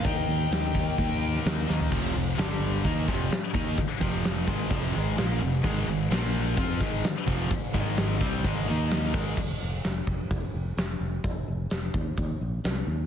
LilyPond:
<<
  \new Staff \with { instrumentName = "Lead electric guitar" } { \time 4/4 \key f \dorian \tempo 4 = 129 g''2. r4 | r1 | r1 | r1 |
r1 | r1 | r1 | }
  \new Staff \with { instrumentName = "Distorted electric guitar" } { \clef bass \time 4/4 \key f \dorian <ees bes ees'>1 | <f, c f>8 <f, c>8 <g, d g>4 <ees bes ees'>8 <f, c f>8 r8 <ees bes ees'>8 | r8 <f, c f>4 <aes, ees aes>8 <f, c f>8 <aes, ees aes>8 <bes, f bes>8 <f, c>8 | <aes, ees aes>8 <aes, ees>8 <bes, f bes>4 <f c' f'>8 <aes, ees aes>8 r8 <f, c f>8 |
r8 <aes, ees aes>4 <c g c'>8 <aes, ees aes>8 <ees bes ees'>4 <aes, ees aes>8 | r1 | r1 | }
  \new Staff \with { instrumentName = "Distorted electric guitar" } { \clef bass \time 4/4 \key f \dorian <ees bes ees'>4. <ees bes ees'>2~ <ees bes ees'>8 | <f, c f>8 <f, c>8 <g, d g>4 <ees bes ees'>8 <f, c f>8 r8 <ees bes ees'>8 | r8 <f, c f>4 <aes, ees aes>8 <f, c f>8 <aes, ees aes>8 <bes, f bes>8 <f, c>8 | <aes, ees aes>8 <aes, ees>8 <bes, f bes>4 <f c' f'>8 <aes, ees aes>8 r8 <f, c f>8 |
r8 <aes, ees aes>4 <c g c'>8 <aes, ees aes>8 <ees bes ees'>4 <aes, ees aes>8 | r1 | r1 | }
  \new Staff \with { instrumentName = "Distorted electric guitar" } { \clef bass \time 4/4 \key f \dorian <ees bes ees'>2.~ <ees bes ees'>8 <ees bes ees'>8 | <f, c f>8 <f, c>8 <g, d g>4 <ees bes ees'>8 <f, c f>8 r8 <ees bes ees'>8 | r8 <f, c f>4 <aes, ees aes>8 <f, c f>8 <aes, ees aes>8 <bes, f bes>8 <f, c>8 | <aes, ees aes>8 <aes, ees>8 <bes, f bes>4 <f c' f'>8 <aes, ees aes>8 r8 <f, c f>8 |
r8 <aes, ees aes>4 <c g c'>8 <aes, ees aes>8 <ees bes ees'>4 <aes, ees aes>8 | r1 | r1 | }
  \new Staff \with { instrumentName = "Fingered electric bass" } { \clef bass \time 4/4 \key f \dorian ees,8 ees,8 ees,4 ees,4 ees,8 ees,8 | f,,8 f,,8 g,,4 ees,8 f,,8 r8 ees,8 | r8 f,,4 aes,,8 f,,8 aes,,8 bes,,8 f,,8 | aes,,8 aes,,8 bes,,4 f,8 aes,,8 r8 f,,8 |
r8 aes,,4 c,8 aes,,8 ees,4 aes,,8 | f,,8 f,,8 f,,8 f,,8 f,,8 f,,8 f,,8 f,,8 | f,,8 f,,8 f,,8 ees,8 ees,8 bes,,8 c,8 ees,8 | }
  \new DrumStaff \with { instrumentName = "Drums" } \drummode { \time 4/4 <cymc bd>8 sn8 <cymc sn>8 bd8 <cymc bd>8. sn16 <cymc sn>8 sn16 tomfh16 | <cymc bd>4 <cymc sn>4 <cymc bd>8 bd8 <cymc sn>8 bd8 | <cymc bd>8 bd8 <cymc sn>8 bd8 <cymc bd>4 <cymc sn>4 | <cymc bd>4 <cymc sn>4 <cymc bd>8 bd8 <cymc sn>8 bd8 |
<cymc bd>8 bd8 <cymc sn>8 bd8 <cymc bd>4 <cymc sn>8 <cymc bd>8 | <cymc bd>4 <hho sn>8 bd8 <hho bd>4 <hho sn>4 | <hho bd>4 <hho sn>8 bd8 <hho bd>4 <hho sn>4 | }
>>